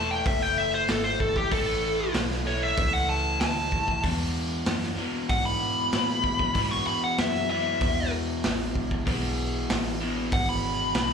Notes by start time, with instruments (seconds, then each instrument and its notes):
Already playing: fingered electric bass E1, overdriven electric guitar A2 E3 A3, lead electric guitar A5
0.11 lead electric guitar G5
0.26 fingered electric bass F#1, lead electric guitar E5, kick, open hi-hat
0.42 lead electric guitar G5
0.58 lead electric guitar E5
0.74 lead electric guitar C5
0.88 fingered electric bass G#1, lead electric guitar A4, snare, open hi-hat
1.04 lead electric guitar C5
1.20 lead electric guitar A4, kick
1.36 lead electric guitar G4, kick
1.51 fingered electric bass A1, overdriven electric guitar A2 E3 A3, lead electric guitar A4, kick, open hi-hat
2.14 fingered electric bass B1, snare, open hi-hat
2.31 snare
2.45 overdriven electric guitar A2 E3 A3, lead electric guitar C#5
2.63 lead electric guitar E5
2.77 fingered electric bass C#2, kick, open hi-hat
2.93 lead electric guitar F#5
3.09 lead electric guitar A5
3.41 fingered electric bass D2, lead electric guitar A5, snare, open hi-hat
3.72 kick
3.88 kick
4.03 overdriven electric guitar E2 B2 E3, fingered electric bass E2, kick, open hi-hat
4.66 fingered electric bass F#2, snare, open hi-hat
4.83 snare
4.97 overdriven electric guitar E2 B2 E3, muted fingered electric bass stroke
5.29 fingered electric bass G#2, lead electric guitar F#5, kick, open hi-hat
5.45 lead electric guitar B5
5.93 fingered electric bass A2, snare, open hi-hat
6.24 kick
6.39 kick
6.54 overdriven electric guitar E2 B2 E3, fingered electric bass G#2, kick, open hi-hat
6.71 lead electric guitar C#6
6.87 lead electric guitar B5, muted fingered electric bass stroke
7.04 lead electric guitar F#5
7.18 fingered electric bass F#2, lead electric guitar E5, snare, open hi-hat
7.49 overdriven electric guitar E2 B2 E3, lead electric guitar E5
7.81 fingered electric bass E2, kick, open hi-hat
8.44 fingered electric bass A1, snare, open hi-hat
8.75 kick
8.91 kick
9.06 fingered electric bass B1, overdriven electric guitar E2 B2 E3, kick, open hi-hat
9.70 fingered electric bass A1, snare, open hi-hat
10.00 overdriven electric guitar E2 B2 E3
10.32 fingered electric bass G#1, lead electric guitar F#5, kick, open hi-hat
10.49 lead electric guitar B5
10.94 fingered electric bass B1, snare, open hi-hat